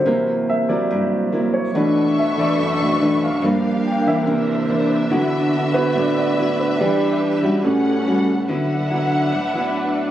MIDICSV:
0, 0, Header, 1, 4, 480
1, 0, Start_track
1, 0, Key_signature, 2, "major"
1, 0, Tempo, 421053
1, 64, Time_signature, 4, 2, 24, 8
1, 11524, End_track
2, 0, Start_track
2, 0, Title_t, "String section"
2, 0, Program_c, 0, 48
2, 1979, Note_on_c, 0, 62, 76
2, 1980, Note_on_c, 0, 85, 72
2, 1982, Note_on_c, 0, 71, 68
2, 1983, Note_on_c, 0, 69, 69
2, 1984, Note_on_c, 0, 76, 87
2, 3884, Note_off_c, 0, 85, 0
2, 3885, Note_off_c, 0, 69, 0
2, 3885, Note_off_c, 0, 71, 0
2, 3886, Note_off_c, 0, 76, 0
2, 3899, Note_on_c, 0, 77, 79
2, 3900, Note_on_c, 0, 70, 67
2, 3901, Note_on_c, 0, 67, 64
2, 4852, Note_off_c, 0, 77, 0
2, 4853, Note_off_c, 0, 67, 0
2, 4856, Note_on_c, 0, 72, 67
2, 4859, Note_on_c, 0, 76, 90
2, 5803, Note_off_c, 0, 70, 0
2, 5808, Note_on_c, 0, 71, 72
2, 5810, Note_on_c, 0, 66, 70
2, 5811, Note_off_c, 0, 72, 0
2, 7717, Note_off_c, 0, 66, 0
2, 7735, Note_on_c, 0, 67, 65
2, 8655, Note_off_c, 0, 62, 0
2, 8662, Note_off_c, 0, 76, 0
2, 8690, Note_off_c, 0, 67, 0
2, 8691, Note_on_c, 0, 69, 68
2, 8696, Note_on_c, 0, 61, 77
2, 8696, Note_on_c, 0, 78, 83
2, 9617, Note_off_c, 0, 71, 0
2, 9648, Note_off_c, 0, 69, 0
2, 9650, Note_off_c, 0, 61, 0
2, 9650, Note_off_c, 0, 78, 0
2, 9663, Note_on_c, 0, 78, 80
2, 9667, Note_on_c, 0, 71, 63
2, 9667, Note_on_c, 0, 76, 62
2, 9674, Note_on_c, 0, 62, 70
2, 11524, Note_off_c, 0, 62, 0
2, 11524, Note_off_c, 0, 71, 0
2, 11524, Note_off_c, 0, 76, 0
2, 11524, Note_off_c, 0, 78, 0
2, 11524, End_track
3, 0, Start_track
3, 0, Title_t, "Grand piano"
3, 0, Program_c, 1, 0
3, 0, Control_c, 1, 64, 127
3, 0, Note_on_c, 1, 72, 62
3, 56, Note_on_c, 1, 48, 41
3, 67, Note_on_c, 1, 52, 36
3, 71, Note_on_c, 1, 58, 46
3, 81, Control_c, 1, 64, 0
3, 274, Control_c, 1, 64, 127
3, 502, Note_off_c, 1, 72, 0
3, 565, Note_on_c, 1, 76, 69
3, 785, Note_on_c, 1, 74, 61
3, 788, Note_off_c, 1, 76, 0
3, 1459, Note_off_c, 1, 74, 0
3, 1750, Note_on_c, 1, 73, 61
3, 1936, Note_off_c, 1, 48, 0
3, 1941, Note_off_c, 1, 52, 0
3, 1943, Note_off_c, 1, 58, 0
3, 1984, Note_on_c, 1, 47, 40
3, 1992, Note_on_c, 1, 57, 37
3, 2000, Note_on_c, 1, 62, 46
3, 2001, Control_c, 1, 64, 0
3, 2200, Control_c, 1, 64, 127
3, 2303, Note_off_c, 1, 47, 0
3, 2308, Note_off_c, 1, 57, 0
3, 2312, Note_off_c, 1, 62, 0
3, 2422, Note_off_c, 1, 73, 0
3, 2499, Note_on_c, 1, 76, 64
3, 2715, Note_off_c, 1, 76, 0
3, 2730, Note_on_c, 1, 74, 67
3, 3197, Note_on_c, 1, 47, 37
3, 3203, Note_on_c, 1, 57, 34
3, 3207, Note_on_c, 1, 62, 41
3, 3392, Note_off_c, 1, 74, 0
3, 3408, Note_off_c, 1, 47, 0
3, 3411, Note_off_c, 1, 57, 0
3, 3413, Note_off_c, 1, 62, 0
3, 3690, Note_on_c, 1, 77, 64
3, 3911, Note_on_c, 1, 43, 43
3, 3920, Control_c, 1, 64, 0
3, 3920, Note_on_c, 1, 53, 37
3, 3924, Note_on_c, 1, 58, 45
3, 4086, Control_c, 1, 64, 127
3, 4352, Note_off_c, 1, 77, 0
3, 4417, Note_on_c, 1, 79, 65
3, 4592, Note_off_c, 1, 43, 0
3, 4597, Note_off_c, 1, 53, 0
3, 4599, Note_off_c, 1, 58, 0
3, 4635, Note_off_c, 1, 79, 0
3, 4646, Note_on_c, 1, 76, 76
3, 4863, Note_on_c, 1, 48, 43
3, 4871, Note_on_c, 1, 52, 42
3, 4877, Note_on_c, 1, 58, 50
3, 4881, Control_c, 1, 64, 0
3, 5095, Control_c, 1, 64, 127
3, 5310, Note_off_c, 1, 76, 0
3, 5548, Note_off_c, 1, 48, 0
3, 5552, Note_off_c, 1, 52, 0
3, 5555, Note_off_c, 1, 58, 0
3, 5820, Note_on_c, 1, 50, 41
3, 5831, Note_on_c, 1, 54, 38
3, 5835, Note_on_c, 1, 59, 45
3, 5837, Control_c, 1, 64, 0
3, 6035, Control_c, 1, 64, 127
3, 6141, Note_off_c, 1, 50, 0
3, 6147, Note_off_c, 1, 54, 0
3, 6149, Note_off_c, 1, 59, 0
3, 6546, Note_on_c, 1, 71, 69
3, 6776, Note_on_c, 1, 50, 38
3, 6777, Note_on_c, 1, 54, 35
3, 6778, Note_off_c, 1, 71, 0
3, 6786, Note_on_c, 1, 59, 41
3, 6805, Note_on_c, 1, 74, 62
3, 6996, Note_off_c, 1, 50, 0
3, 6996, Note_off_c, 1, 54, 0
3, 7001, Note_off_c, 1, 59, 0
3, 7013, Note_off_c, 1, 74, 0
3, 7030, Note_on_c, 1, 74, 62
3, 7474, Note_off_c, 1, 74, 0
3, 7519, Note_on_c, 1, 71, 54
3, 7744, Note_off_c, 1, 71, 0
3, 7745, Note_on_c, 1, 52, 43
3, 7749, Note_on_c, 1, 55, 38
3, 7753, Note_on_c, 1, 62, 47
3, 7758, Control_c, 1, 64, 0
3, 7774, Note_on_c, 1, 74, 57
3, 7982, Control_c, 1, 64, 127
3, 8063, Note_off_c, 1, 52, 0
3, 8065, Note_off_c, 1, 55, 0
3, 8068, Note_off_c, 1, 62, 0
3, 8206, Note_off_c, 1, 74, 0
3, 8707, Note_on_c, 1, 45, 45
3, 8715, Note_on_c, 1, 55, 41
3, 8716, Control_c, 1, 64, 0
3, 8726, Note_on_c, 1, 61, 49
3, 8889, Control_c, 1, 64, 127
3, 9389, Note_off_c, 1, 45, 0
3, 9394, Note_off_c, 1, 55, 0
3, 9399, Note_off_c, 1, 61, 0
3, 9677, Control_c, 1, 64, 0
3, 11524, End_track
4, 0, Start_track
4, 0, Title_t, "Nylon-string guitar"
4, 0, Program_c, 2, 24
4, 66, Note_on_c, 2, 48, 68
4, 73, Note_on_c, 2, 54, 56
4, 76, Note_on_c, 2, 58, 54
4, 79, Note_on_c, 2, 64, 68
4, 546, Note_off_c, 2, 54, 0
4, 547, Note_off_c, 2, 58, 0
4, 549, Note_off_c, 2, 64, 0
4, 789, Note_on_c, 2, 54, 60
4, 796, Note_on_c, 2, 58, 60
4, 797, Note_on_c, 2, 64, 62
4, 1001, Note_off_c, 2, 48, 0
4, 1033, Note_on_c, 2, 43, 61
4, 1469, Note_off_c, 2, 54, 0
4, 1470, Note_off_c, 2, 58, 0
4, 1473, Note_off_c, 2, 64, 0
4, 1509, Note_on_c, 2, 54, 54
4, 1518, Note_on_c, 2, 58, 53
4, 1526, Note_on_c, 2, 64, 57
4, 1949, Note_off_c, 2, 54, 0
4, 1954, Note_off_c, 2, 58, 0
4, 1955, Note_off_c, 2, 64, 0
4, 1965, Note_off_c, 2, 43, 0
4, 1995, Note_on_c, 2, 47, 67
4, 2000, Note_on_c, 2, 52, 60
4, 2002, Note_on_c, 2, 57, 56
4, 2008, Note_on_c, 2, 62, 59
4, 2468, Note_off_c, 2, 52, 0
4, 2471, Note_off_c, 2, 57, 0
4, 2473, Note_off_c, 2, 62, 0
4, 2705, Note_on_c, 2, 52, 58
4, 2712, Note_on_c, 2, 57, 60
4, 2715, Note_on_c, 2, 62, 68
4, 2928, Note_off_c, 2, 47, 0
4, 2946, Note_on_c, 2, 42, 62
4, 3387, Note_off_c, 2, 52, 0
4, 3388, Note_off_c, 2, 57, 0
4, 3392, Note_off_c, 2, 62, 0
4, 3424, Note_on_c, 2, 52, 58
4, 3431, Note_on_c, 2, 57, 56
4, 3436, Note_on_c, 2, 62, 62
4, 3734, Note_off_c, 2, 52, 0
4, 3736, Note_off_c, 2, 57, 0
4, 3740, Note_off_c, 2, 62, 0
4, 3882, Note_off_c, 2, 42, 0
4, 3901, Note_on_c, 2, 43, 70
4, 3904, Note_on_c, 2, 53, 52
4, 3911, Note_on_c, 2, 58, 53
4, 3912, Note_on_c, 2, 62, 58
4, 4381, Note_off_c, 2, 53, 0
4, 4382, Note_off_c, 2, 58, 0
4, 4386, Note_off_c, 2, 62, 0
4, 4630, Note_on_c, 2, 52, 59
4, 4637, Note_on_c, 2, 58, 68
4, 4640, Note_on_c, 2, 62, 65
4, 4840, Note_off_c, 2, 43, 0
4, 4869, Note_on_c, 2, 48, 69
4, 5309, Note_off_c, 2, 52, 0
4, 5313, Note_off_c, 2, 58, 0
4, 5314, Note_off_c, 2, 62, 0
4, 5346, Note_on_c, 2, 52, 55
4, 5348, Note_on_c, 2, 58, 54
4, 5357, Note_on_c, 2, 62, 65
4, 5787, Note_off_c, 2, 52, 0
4, 5787, Note_off_c, 2, 58, 0
4, 5792, Note_off_c, 2, 62, 0
4, 5803, Note_off_c, 2, 48, 0
4, 5817, Note_on_c, 2, 50, 68
4, 5827, Note_on_c, 2, 59, 61
4, 5827, Note_on_c, 2, 64, 57
4, 5832, Note_on_c, 2, 66, 63
4, 6505, Note_off_c, 2, 59, 0
4, 6508, Note_off_c, 2, 64, 0
4, 6509, Note_off_c, 2, 66, 0
4, 6546, Note_on_c, 2, 59, 67
4, 6550, Note_on_c, 2, 64, 67
4, 6559, Note_on_c, 2, 66, 63
4, 6758, Note_off_c, 2, 50, 0
4, 6785, Note_on_c, 2, 45, 67
4, 7227, Note_off_c, 2, 59, 0
4, 7229, Note_off_c, 2, 64, 0
4, 7231, Note_off_c, 2, 66, 0
4, 7268, Note_on_c, 2, 59, 56
4, 7276, Note_on_c, 2, 64, 56
4, 7282, Note_on_c, 2, 66, 58
4, 7708, Note_off_c, 2, 59, 0
4, 7712, Note_off_c, 2, 64, 0
4, 7714, Note_off_c, 2, 66, 0
4, 7720, Note_off_c, 2, 45, 0
4, 7746, Note_on_c, 2, 52, 67
4, 7748, Note_on_c, 2, 59, 56
4, 7751, Note_on_c, 2, 62, 55
4, 7759, Note_on_c, 2, 67, 65
4, 8426, Note_off_c, 2, 59, 0
4, 8430, Note_off_c, 2, 62, 0
4, 8431, Note_off_c, 2, 67, 0
4, 8463, Note_off_c, 2, 52, 0
4, 8467, Note_on_c, 2, 55, 59
4, 8476, Note_on_c, 2, 61, 56
4, 8479, Note_on_c, 2, 66, 64
4, 8713, Note_on_c, 2, 45, 66
4, 9148, Note_off_c, 2, 55, 0
4, 9150, Note_off_c, 2, 61, 0
4, 9153, Note_off_c, 2, 66, 0
4, 9196, Note_on_c, 2, 55, 56
4, 9200, Note_on_c, 2, 61, 51
4, 9206, Note_on_c, 2, 66, 56
4, 9499, Note_off_c, 2, 55, 0
4, 9502, Note_off_c, 2, 61, 0
4, 9504, Note_off_c, 2, 66, 0
4, 9644, Note_off_c, 2, 45, 0
4, 9672, Note_on_c, 2, 50, 59
4, 9677, Note_on_c, 2, 54, 51
4, 9682, Note_on_c, 2, 59, 47
4, 9684, Note_on_c, 2, 64, 54
4, 9979, Note_off_c, 2, 54, 0
4, 9980, Note_off_c, 2, 59, 0
4, 9983, Note_off_c, 2, 64, 0
4, 10150, Note_on_c, 2, 54, 54
4, 10155, Note_on_c, 2, 59, 49
4, 10162, Note_on_c, 2, 64, 56
4, 10605, Note_off_c, 2, 50, 0
4, 10625, Note_off_c, 2, 54, 0
4, 10627, Note_off_c, 2, 59, 0
4, 10630, Note_off_c, 2, 64, 0
4, 10631, Note_on_c, 2, 45, 57
4, 10871, Note_on_c, 2, 54, 45
4, 10877, Note_on_c, 2, 59, 51
4, 10885, Note_on_c, 2, 64, 57
4, 11524, Note_off_c, 2, 45, 0
4, 11524, Note_off_c, 2, 54, 0
4, 11524, Note_off_c, 2, 59, 0
4, 11524, Note_off_c, 2, 64, 0
4, 11524, End_track
0, 0, End_of_file